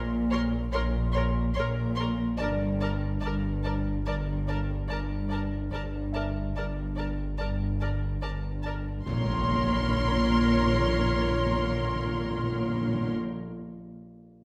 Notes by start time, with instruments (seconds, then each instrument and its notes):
Already playing: double bass section A#1, sub bass A#1, cello section A#2
0.31 viola section A#4, violin section C#5 C6
0.72 double bass section A#1, cello section A#2, viola section A#4, violin section C#5 C6
1.13 viola section A#4, violin section C#5 C6, grand piano C6
1.54 double bass section A#1, cello section A#2, violin section C#5 C6
1.59 viola section A#4
1.96 violin section C#5 C6
2.00 viola section A#4
2.38 double bass section G1, sub bass G1, cello section G2, grand piano D4 D5, viola section A#4, violin section D5 A5
2.80 viola section A#4, violin section D5 A5
3.21 double bass section G1, cello section G2, violin section D5 A5
3.25 viola section A#4
3.64 viola section A#4, violin section D5 A5
4.06 double bass section G1, cello section G2, viola section A#4, violin section D5 A5
4.48 viola section A#4, violin section D5 A5
4.88 double bass section G1, cello section G2, violin section D5 A5
4.92 viola section A#4
5.28 violin section D5 A5
5.33 viola section A#4
5.71 sub bass G1, double bass section G1, cello section G2, viola section A#4, violin section D5 A5
6.13 viola section A#4, violin section D5 A5, grand piano E5
6.56 double bass section G1, cello section G2, viola section A#4, violin section D5 A5
6.95 viola section A#4, violin section D5 A5
7.38 double bass section G1, cello section G2, viola section A#4, violin section D5 A5
7.81 viola section A#4, violin section D5 A5
8.22 double bass section G1, cello section G2, viola section A#4, violin section D5 A5
8.63 viola section A#4, violin section D5 A5
9.05 sub bass A#1, double bass section A#1, timpani A#2, cello section A#2, viola section A#4, violin section C#5 C6, impact
9.12 timpani A#2
9.18 timpani A#2
9.24 timpani A#2
9.30 timpani A#2
9.36 timpani A#2
9.42 timpani A#2
9.49 timpani A#2
9.55 timpani A#2
9.61 timpani A#2
9.68 timpani A#2
9.74 timpani A#2
9.80 timpani A#2
9.86 timpani A#2
9.93 timpani A#2
9.99 timpani A#2
10.05 timpani A#2
10.11 timpani A#2
10.17 timpani A#2
10.23 timpani A#2
10.29 timpani A#2
10.35 timpani A#2
10.41 timpani A#2
10.48 timpani A#2
10.54 timpani A#2
10.61 timpani A#2
10.67 timpani A#2
10.73 timpani A#2
10.79 timpani A#2
10.86 timpani A#2
10.93 timpani A#2
10.99 timpani A#2
11.05 timpani A#2
11.11 timpani A#2
11.18 timpani A#2
11.25 timpani A#2
11.31 timpani A#2
11.38 timpani A#2
11.44 timpani A#2
11.51 timpani A#2
11.57 timpani A#2
11.63 timpani A#2
11.69 timpani A#2
11.75 timpani A#2
11.81 timpani A#2
11.88 timpani A#2
11.94 timpani A#2
12.00 timpani A#2
12.06 timpani A#2
12.12 timpani A#2
12.19 timpani A#2
12.25 timpani A#2
12.31 timpani A#2
12.37 timpani A#2
12.43 timpani A#2
12.50 timpani A#2
12.56 timpani A#2
12.62 timpani A#2
12.68 timpani A#2
12.74 timpani A#2
12.81 timpani A#2
12.87 timpani A#2
12.94 timpani A#2
13.01 timpani A#2
13.07 timpani A#2